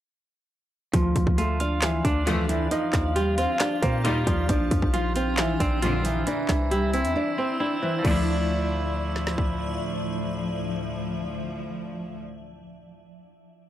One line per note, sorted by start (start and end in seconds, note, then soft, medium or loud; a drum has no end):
0.93 1.15 D2 loud
0.93 2.05 F3 loud
0.93 1.36 F3 medium
0.93 2.70 D4 medium
0.93 1.35 F4 loud
0.93 2.70 D5 medium
0.93 2.70 F5 medium
0.93 kick loud
0.93 closed hi-hat medium
1.16 1.26 D2 loud
1.16 kick loud
1.16 closed hi-hat medium
1.27 2.02 D2 loud
1.27 kick loud
1.38 1.58 A3 medium
1.38 2.49 F4 loud
1.38 1.57 A4 medium
1.38 closed hi-hat medium
1.60 1.80 D4 medium
1.60 1.80 D5 medium
1.60 2.71 F5 medium
1.60 closed hi-hat medium
1.82 2.02 E3 medium
1.82 2.02 E4 medium
1.82 snare loud
1.82 clap loud
1.82 closed hi-hat medium
2.05 2.69 D2 loud
2.05 2.71 D4 medium
2.05 2.24 D4 medium
2.05 2.24 D5 medium
2.05 kick loud
2.05 closed hi-hat medium
2.27 2.59 F2 loud
2.27 2.59 E3 loud
2.27 2.48 F3 loud
2.27 2.46 F3 medium
2.27 2.59 A3 loud
2.27 2.46 F4 medium
2.27 closed hi-hat medium
2.49 2.69 E3 medium
2.49 2.70 F3 medium
2.49 2.68 E4 medium
2.49 closed hi-hat medium
2.71 3.82 F3 medium
2.71 3.13 D#4 medium
2.71 4.47 D#4 medium
2.71 4.47 G4 medium
2.71 3.13 D#5 medium
2.71 4.47 F5 medium
2.71 4.01 F5 loud
2.71 closed hi-hat medium
2.93 3.47 D#2 loud
2.93 kick loud
2.93 snare medium
2.93 clap medium
2.93 closed hi-hat medium
3.16 3.35 G3 medium
3.16 3.37 F4 loud
3.16 3.35 G4 medium
3.16 closed hi-hat medium
3.38 3.57 C4 medium
3.38 4.03 F4 medium
3.38 3.58 C5 medium
3.38 closed hi-hat medium
3.60 3.79 D4 medium
3.60 3.80 D5 medium
3.60 snare loud
3.60 clap loud
3.60 closed hi-hat medium
3.82 4.25 A#2 loud
3.82 4.49 A#3 medium
3.82 4.02 C4 medium
3.82 4.02 C5 medium
3.82 kick loud
3.82 closed hi-hat medium
4.05 4.36 D#2 loud
4.05 4.36 A#2 loud
4.05 4.36 G3 loud
4.05 4.24 D#4 medium
4.05 4.49 F4 loud
4.05 4.26 D#5 medium
4.05 4.24 D#5 medium
4.05 closed hi-hat medium
4.27 4.48 D#2 loud
4.27 4.48 F3 medium
4.27 4.46 F3 medium
4.27 4.46 F4 medium
4.27 4.48 D5 medium
4.27 kick loud
4.27 closed hi-hat medium
4.49 4.70 A#1 loud
4.49 5.60 F3 loud
4.49 6.25 D4 medium
4.49 4.91 D4 loud
4.49 6.25 C5 medium
4.49 4.92 D5 medium
4.49 6.25 A#5 medium
4.49 kick loud
4.49 closed hi-hat medium
4.71 4.82 F2 loud
4.71 kick loud
4.71 closed hi-hat medium
4.82 5.57 A#1 loud
4.82 kick loud
4.94 5.13 F3 medium
4.94 5.13 F4 medium
4.94 5.15 F4 medium
4.94 closed hi-hat medium
5.16 5.35 C4 medium
5.16 5.81 F4 medium
5.16 5.36 C5 medium
5.16 closed hi-hat medium
5.37 5.58 E3 medium
5.37 5.57 E4 medium
5.37 snare loud
5.37 clap loud
5.37 closed hi-hat medium
5.60 6.24 A#1 loud
5.60 6.27 C4 medium
5.60 5.80 D4 medium
5.60 5.80 D5 medium
5.60 kick loud
5.60 closed hi-hat medium
5.82 6.14 A#1 loud
5.82 6.14 F2 loud
5.82 6.14 D3 loud
5.82 6.02 F3 medium
5.82 6.02 F4 medium
5.82 6.27 F4 loud
5.82 closed hi-hat medium
6.04 6.24 E3 medium
6.04 6.27 F3 medium
6.04 6.24 E4 medium
6.04 closed hi-hat medium
6.27 7.38 E3 loud
6.27 6.69 D4 loud
6.27 8.03 E4 medium
6.27 8.03 D5 medium
6.27 6.69 D5 medium
6.27 7.56 E5 loud
6.27 8.03 C6 medium
6.27 closed hi-hat medium
6.49 7.06 C2 loud
6.49 kick loud
6.49 snare medium
6.49 clap medium
6.49 closed hi-hat medium
6.71 6.91 G3 medium
6.71 6.92 E4 medium
6.71 6.90 G4 medium
6.71 closed hi-hat medium
6.93 7.13 C4 medium
6.93 7.59 E4 medium
6.93 7.13 C5 medium
6.93 closed hi-hat medium
7.05 7.16 E2 loud
7.05 closed hi-hat medium
7.16 7.35 D4 medium
7.16 7.35 D5 medium
7.38 8.05 C4 medium
7.38 7.57 C4 medium
7.38 7.58 C5 medium
7.60 7.79 D4 medium
7.60 8.05 E4 medium
7.60 7.81 D5 medium
7.60 7.80 D5 medium
7.82 7.98 E3 medium
7.82 8.02 E3 medium
7.82 8.02 E4 medium
7.82 8.04 C5 medium
7.99 12.15 F3 medium
7.99 12.19 A3 medium
8.05 9.78 D2 loud
8.05 12.21 D2 medium
8.05 12.21 A2 medium
8.05 9.34 F3 medium
8.05 12.21 F3 medium
8.05 12.21 F3 loud
8.05 12.23 D4 medium
8.05 9.34 D5 loud
8.05 12.21 D5 medium
8.05 12.21 E5 medium
8.05 kick loud
8.05 crash medium
8.11 12.27 E4 medium
9.16 snare medium
9.27 snare medium
9.38 kick medium